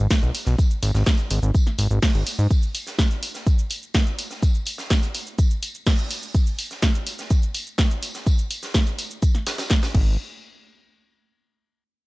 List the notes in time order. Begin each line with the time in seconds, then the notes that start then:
0.11 kick, snare, tambourine, shaker
0.23 B1, shaker
0.35 open hi-hat, tambourine, shaker
0.45 B1, snare, shaker
0.59 kick, tambourine, shaker
0.71 shaker
0.83 G#1, open hi-hat, tambourine, shaker
0.94 G#1, snare, shaker
1.06 kick, snare, tambourine, shaker
1.18 closed hi-hat, shaker
1.30 G#1, open hi-hat, tambourine, shaker
1.43 G#1, shaker
1.55 kick, tambourine, shaker
1.67 snare, shaker
1.78 G#1, open hi-hat, tambourine, shaker
1.91 G#1, shaker
2.02 kick, snare, open hi-hat, shaker
2.15 G#1, shaker
2.27 open hi-hat, tambourine, shaker
2.39 G#2, shaker
2.50 kick, tambourine, shaker
2.63 shaker
2.75 open hi-hat, tambourine, shaker
2.87 snare, shaker
2.99 kick, snare, tambourine, shaker
3.11 shaker
3.23 open hi-hat, tambourine
3.35 snare, shaker
3.47 kick, tambourine, shaker
3.59 shaker
3.70 open hi-hat, tambourine, shaker
3.83 shaker
3.94 kick, snare, tambourine, shaker
4.07 shaker
4.19 open hi-hat, tambourine, shaker
4.31 snare, shaker
4.43 kick, tambourine, shaker
4.55 shaker
4.65 open hi-hat, tambourine, shaker
4.78 snare, shaker
4.90 kick, snare, tambourine, shaker
5.03 closed hi-hat, shaker
5.14 open hi-hat, tambourine
5.27 shaker
5.39 kick, tambourine, shaker
5.51 shaker
5.63 open hi-hat, tambourine, shaker
5.75 shaker
5.87 kick, snare, open hi-hat, shaker
5.99 shaker
6.11 open hi-hat, tambourine, shaker
6.23 shaker
6.34 kick, tambourine, shaker
6.47 shaker
6.59 open hi-hat, tambourine, shaker
6.71 snare, shaker
6.82 kick, snare, tambourine, shaker
6.95 shaker
7.07 open hi-hat, tambourine
7.19 snare, shaker
7.30 kick, tambourine, shaker
7.43 shaker
7.54 open hi-hat, tambourine, shaker
7.67 shaker
7.78 kick, snare, tambourine, shaker
7.91 shaker
8.03 open hi-hat, tambourine, shaker
8.15 snare, shaker
8.27 kick, tambourine, shaker
8.39 shaker
8.51 open hi-hat, tambourine, shaker
8.63 snare, shaker
8.74 kick, snare, tambourine, shaker
8.87 closed hi-hat, shaker
8.98 open hi-hat, tambourine, shaker
9.11 shaker
9.22 kick, tambourine, shaker
9.35 snare, shaker
9.47 snare, open hi-hat, tambourine, shaker
9.58 snare, tambourine, shaker
9.70 kick, snare, tambourine, shaker
9.83 snare, tambourine, shaker
9.95 G#1, kick, crash